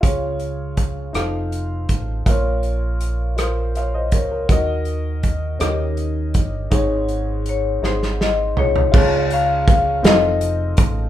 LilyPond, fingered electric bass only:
\new Staff \with { instrumentName = "Fingered electric bass" } { \clef bass \time 6/8 \key des \major \tempo 4. = 54 des,4. f,,4 a,,8 | bes,,2~ bes,,8 des,8 | ees,4. ees,4 g,,8 | aes,,4. aes,,4 c,8 |
des,4. f,,4 a,,8 | }